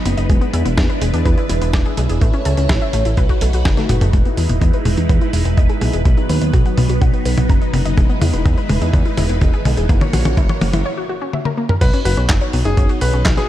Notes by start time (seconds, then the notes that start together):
Already playing: F#3 B3 D#4 B4
0.05 F#1 B3, closed hi-hat
0.17 F#1 D#5, closed hi-hat
0.29 E1 G#3 D4 E4 B4, kick, closed hi-hat
0.41 B3, closed hi-hat
0.53 E2 E4, closed hi-hat
0.65 E1 B3, closed hi-hat
0.77 E2 D4, kick, snare, closed hi-hat
0.90 B4, closed hi-hat
1.01 E1 G#3, closed hi-hat
1.14 E2 D4, closed hi-hat
1.25 E2 B4, kick, closed hi-hat
1.38 E4, closed hi-hat
1.49 E1 E4, closed hi-hat
1.62 E1 B3, closed hi-hat
1.73 E1 D5, kick, snare, closed hi-hat
1.85 G#4, closed hi-hat
1.97 B1 G#3, closed hi-hat
2.09 E1 G#4, closed hi-hat
2.21 A1 A3 C#4 C#5, kick, closed hi-hat
2.33 C#4, closed hi-hat
2.45 C#2 A4, closed hi-hat
2.57 C#2 C#4, closed hi-hat
2.69 A1 E4, kick, snare, closed hi-hat
2.81 E5, closed hi-hat
2.93 A1 A3, closed hi-hat
3.05 A1 E4, closed hi-hat
3.17 B1 D#4 F#4 B4, kick, closed hi-hat
3.29 F#4, kick, closed hi-hat
3.41 B1 A4, closed hi-hat
3.53 B1 F#4, closed hi-hat
3.65 F#1 F#4, kick, snare, closed hi-hat, high tom
3.77 A3, snare, closed hi-hat, high tom
3.89 F#1 F#4, closed hi-hat, mid tom
4.01 F#1 A3, closed hi-hat, mid tom
4.13 E1 G#3 D#4 E4 B4, kick, closed hi-hat, mid tom
4.25 B3, closed hi-hat
4.37 E2 E4, open hi-hat
4.49 E1 B3, closed hi-hat, mid tom
4.61 E2 D#4, kick, closed hi-hat
4.73 B4, closed hi-hat
4.85 E1 G#3, open hi-hat, mid tom
4.97 E2 D#4, closed hi-hat
5.09 E2 B4, kick, closed hi-hat, mid tom
5.21 E4, closed hi-hat
5.33 E1 E4, open hi-hat
5.45 E1 B3, closed hi-hat
5.57 E1 D#5, kick, closed hi-hat
5.70 G#4, closed hi-hat
5.81 B1 G#3, open hi-hat, mid tom
5.93 E1 G#4, closed hi-hat
6.05 B1 F#3 B3 D#4, kick, closed hi-hat, mid tom
6.17 D#4, closed hi-hat
6.29 D#2 B4, open hi-hat
6.41 D#2 D#4, closed hi-hat
6.53 B1 F#4, kick, closed hi-hat
6.66 F#5, closed hi-hat
6.78 B1 B3, open hi-hat, mid tom
6.89 B1 F#4, closed hi-hat
7.02 B1 F#5, kick, closed hi-hat, mid tom
7.13 B4, closed hi-hat
7.25 B1 B4, open hi-hat
7.38 B1 D#4, closed hi-hat, mid tom
7.49 F#1 A#5, kick, closed hi-hat
7.61 D#5, closed hi-hat
7.73 F#1 B3, open hi-hat, mid tom
7.85 F#1 D#5, closed hi-hat
7.97 E1 G#3 E4 B4, kick, closed hi-hat, mid tom
8.09 B3, closed hi-hat
8.21 E2 E4, open hi-hat, mid tom
8.33 E1 B3, closed hi-hat
8.45 E2 D#4, kick, closed hi-hat, mid tom
8.58 B4, closed hi-hat
8.69 E1 G#3, open hi-hat, mid tom
8.81 E2 D#4, closed hi-hat
8.93 E2 B4, kick, closed hi-hat, mid tom
9.05 E4, closed hi-hat
9.17 E1 E4, open hi-hat, mid tom
9.29 E1 B3, closed hi-hat
9.41 E1 D#5, kick, closed hi-hat, mid tom
9.53 G#4, closed hi-hat
9.65 B1 G#3, open hi-hat, mid tom
9.77 E1 G#4, closed hi-hat
9.89 F#1 A#3 F#4 C#5, kick, closed hi-hat, mid tom
10.01 C#4, closed hi-hat, mid tom
10.13 A#1 F#4, open hi-hat, mid tom
10.25 A#1 C#4, closed hi-hat, mid tom
10.37 F#1 E4, kick, closed hi-hat, mid tom
10.49 C#5, closed hi-hat, mid tom
10.61 F#1 A#3, open hi-hat, mid tom
10.73 F#1 E4, closed hi-hat, mid tom
10.85 C#5
10.97 F#4
11.09 F#4
11.22 C#4
11.33 E5, high tom
11.45 A#4, high tom
11.57 A#3
11.69 A#4, mid tom
11.81 B1 B3 D#4 F#4 B4 C#5, kick, closed hi-hat, crash
11.93 C#4, closed hi-hat
12.05 F#1 F#4 B4, open hi-hat
12.17 B1 C#4, closed hi-hat
12.29 F#1 D#4, kick, snare, clap, closed hi-hat
12.41 C#5, closed hi-hat
12.53 B1 B3, open hi-hat
12.65 F#1 D#4 G#4, closed hi-hat
12.77 F#1 C#5, kick, closed hi-hat
12.89 F#4, closed hi-hat
13.01 B1 F#4 B4, open hi-hat
13.13 B1 C#4, closed hi-hat
13.25 B1 D#5, kick, snare, clap, closed hi-hat
13.37 G#4 B4, snare, closed hi-hat